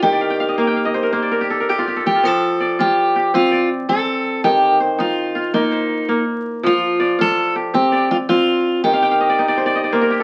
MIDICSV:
0, 0, Header, 1, 3, 480
1, 0, Start_track
1, 0, Tempo, 366748
1, 33, Time_signature, 12, 3, 24, 8
1, 13390, End_track
2, 0, Start_track
2, 0, Title_t, "Kora"
2, 0, Program_c, 0, 46
2, 0, Note_on_c, 0, 60, 81
2, 0, Note_on_c, 0, 69, 67
2, 0, Note_on_c, 0, 70, 62
2, 0, Note_on_c, 0, 72, 58
2, 0, Note_on_c, 0, 74, 61
2, 31, Note_on_c, 0, 51, 81
2, 155, Note_off_c, 0, 74, 0
2, 160, Note_on_c, 0, 74, 67
2, 274, Note_on_c, 0, 77, 61
2, 373, Note_off_c, 0, 72, 0
2, 395, Note_on_c, 0, 79, 61
2, 517, Note_off_c, 0, 77, 0
2, 522, Note_on_c, 0, 77, 66
2, 637, Note_on_c, 0, 75, 69
2, 715, Note_off_c, 0, 74, 0
2, 743, Note_off_c, 0, 70, 0
2, 755, Note_off_c, 0, 77, 0
2, 756, Note_on_c, 0, 58, 76
2, 760, Note_on_c, 0, 77, 64
2, 835, Note_off_c, 0, 69, 0
2, 874, Note_off_c, 0, 79, 0
2, 880, Note_on_c, 0, 79, 64
2, 939, Note_off_c, 0, 60, 0
2, 992, Note_off_c, 0, 77, 0
2, 997, Note_on_c, 0, 77, 60
2, 1109, Note_off_c, 0, 75, 0
2, 1115, Note_on_c, 0, 75, 64
2, 1233, Note_on_c, 0, 72, 65
2, 1348, Note_on_c, 0, 70, 64
2, 1468, Note_off_c, 0, 58, 0
2, 1468, Note_off_c, 0, 72, 0
2, 1473, Note_on_c, 0, 58, 73
2, 1473, Note_on_c, 0, 72, 64
2, 1601, Note_on_c, 0, 74, 63
2, 1680, Note_off_c, 0, 75, 0
2, 1716, Note_off_c, 0, 70, 0
2, 1721, Note_on_c, 0, 70, 62
2, 1844, Note_on_c, 0, 67, 64
2, 1967, Note_on_c, 0, 69, 64
2, 2045, Note_off_c, 0, 58, 0
2, 2045, Note_off_c, 0, 70, 0
2, 2096, Note_on_c, 0, 70, 57
2, 2099, Note_off_c, 0, 79, 0
2, 2211, Note_off_c, 0, 67, 0
2, 2216, Note_on_c, 0, 67, 69
2, 2218, Note_off_c, 0, 67, 0
2, 2218, Note_on_c, 0, 67, 60
2, 2304, Note_off_c, 0, 77, 0
2, 2336, Note_on_c, 0, 65, 67
2, 2449, Note_off_c, 0, 67, 0
2, 2455, Note_on_c, 0, 67, 63
2, 2566, Note_off_c, 0, 69, 0
2, 2571, Note_on_c, 0, 69, 61
2, 2650, Note_off_c, 0, 70, 0
2, 2689, Note_off_c, 0, 67, 0
2, 2694, Note_on_c, 0, 67, 67
2, 2805, Note_off_c, 0, 65, 0
2, 2811, Note_on_c, 0, 65, 60
2, 2924, Note_on_c, 0, 53, 83
2, 2993, Note_off_c, 0, 51, 0
2, 3028, Note_off_c, 0, 72, 0
2, 3052, Note_off_c, 0, 74, 0
2, 3408, Note_on_c, 0, 74, 62
2, 3645, Note_off_c, 0, 65, 0
2, 3650, Note_on_c, 0, 65, 71
2, 4125, Note_off_c, 0, 67, 0
2, 4131, Note_on_c, 0, 67, 66
2, 4296, Note_off_c, 0, 69, 0
2, 4370, Note_on_c, 0, 60, 77
2, 4598, Note_off_c, 0, 74, 0
2, 4603, Note_on_c, 0, 74, 63
2, 5082, Note_off_c, 0, 60, 0
2, 5087, Note_on_c, 0, 60, 66
2, 5631, Note_off_c, 0, 65, 0
2, 5811, Note_on_c, 0, 51, 84
2, 5875, Note_off_c, 0, 53, 0
2, 5890, Note_off_c, 0, 74, 0
2, 5979, Note_off_c, 0, 67, 0
2, 6285, Note_on_c, 0, 72, 59
2, 6524, Note_on_c, 0, 63, 74
2, 7003, Note_on_c, 0, 65, 63
2, 7246, Note_on_c, 0, 58, 77
2, 7443, Note_off_c, 0, 60, 0
2, 7476, Note_off_c, 0, 72, 0
2, 7481, Note_on_c, 0, 72, 65
2, 7960, Note_off_c, 0, 58, 0
2, 7966, Note_on_c, 0, 58, 73
2, 8647, Note_off_c, 0, 63, 0
2, 8683, Note_on_c, 0, 53, 88
2, 8750, Note_off_c, 0, 51, 0
2, 8984, Note_off_c, 0, 65, 0
2, 9036, Note_off_c, 0, 72, 0
2, 9158, Note_on_c, 0, 74, 68
2, 9406, Note_on_c, 0, 65, 78
2, 9889, Note_on_c, 0, 67, 65
2, 10126, Note_on_c, 0, 60, 79
2, 10361, Note_off_c, 0, 74, 0
2, 10366, Note_on_c, 0, 74, 68
2, 10491, Note_off_c, 0, 58, 0
2, 10843, Note_off_c, 0, 60, 0
2, 10848, Note_on_c, 0, 60, 72
2, 11387, Note_off_c, 0, 65, 0
2, 11570, Note_on_c, 0, 51, 76
2, 11621, Note_off_c, 0, 53, 0
2, 11648, Note_off_c, 0, 74, 0
2, 11692, Note_on_c, 0, 77, 68
2, 11737, Note_off_c, 0, 67, 0
2, 11811, Note_on_c, 0, 79, 68
2, 11921, Note_off_c, 0, 77, 0
2, 11926, Note_on_c, 0, 77, 63
2, 12048, Note_on_c, 0, 75, 67
2, 12167, Note_on_c, 0, 74, 64
2, 12284, Note_off_c, 0, 75, 0
2, 12288, Note_on_c, 0, 63, 75
2, 12289, Note_on_c, 0, 75, 67
2, 12405, Note_off_c, 0, 74, 0
2, 12410, Note_on_c, 0, 74, 70
2, 12531, Note_on_c, 0, 72, 61
2, 12636, Note_off_c, 0, 74, 0
2, 12641, Note_on_c, 0, 74, 73
2, 12719, Note_off_c, 0, 75, 0
2, 12764, Note_on_c, 0, 75, 68
2, 12872, Note_off_c, 0, 74, 0
2, 12877, Note_on_c, 0, 74, 64
2, 12955, Note_off_c, 0, 63, 0
2, 12983, Note_off_c, 0, 72, 0
2, 12988, Note_on_c, 0, 72, 70
2, 12990, Note_on_c, 0, 58, 80
2, 13031, Note_off_c, 0, 79, 0
2, 13108, Note_on_c, 0, 70, 69
2, 13204, Note_off_c, 0, 60, 0
2, 13225, Note_on_c, 0, 67, 72
2, 13233, Note_off_c, 0, 77, 0
2, 13390, Note_off_c, 0, 51, 0
2, 13390, Note_off_c, 0, 58, 0
2, 13390, Note_off_c, 0, 67, 0
2, 13390, Note_off_c, 0, 70, 0
2, 13390, Note_off_c, 0, 72, 0
2, 13390, Note_off_c, 0, 74, 0
2, 13390, Note_off_c, 0, 75, 0
2, 13390, End_track
3, 0, Start_track
3, 0, Title_t, "Steel-string acoustic guitar"
3, 0, Program_c, 1, 25
3, 33, Note_on_c, 1, 67, 80
3, 2393, Note_off_c, 1, 67, 0
3, 2703, Note_on_c, 1, 67, 87
3, 2946, Note_off_c, 1, 67, 0
3, 2946, Note_on_c, 1, 69, 104
3, 3665, Note_off_c, 1, 69, 0
3, 3670, Note_on_c, 1, 67, 90
3, 4331, Note_off_c, 1, 67, 0
3, 4381, Note_on_c, 1, 65, 86
3, 4823, Note_off_c, 1, 65, 0
3, 5093, Note_on_c, 1, 69, 93
3, 5761, Note_off_c, 1, 69, 0
3, 5811, Note_on_c, 1, 67, 83
3, 6257, Note_off_c, 1, 67, 0
3, 6543, Note_on_c, 1, 65, 79
3, 7205, Note_off_c, 1, 65, 0
3, 7250, Note_on_c, 1, 63, 68
3, 8154, Note_off_c, 1, 63, 0
3, 8722, Note_on_c, 1, 65, 94
3, 9432, Note_off_c, 1, 65, 0
3, 9438, Note_on_c, 1, 69, 106
3, 9866, Note_off_c, 1, 69, 0
3, 10134, Note_on_c, 1, 67, 85
3, 10609, Note_off_c, 1, 67, 0
3, 10614, Note_on_c, 1, 65, 85
3, 10679, Note_off_c, 1, 65, 0
3, 10850, Note_on_c, 1, 65, 84
3, 11561, Note_off_c, 1, 65, 0
3, 11567, Note_on_c, 1, 67, 81
3, 13390, Note_off_c, 1, 67, 0
3, 13390, End_track
0, 0, End_of_file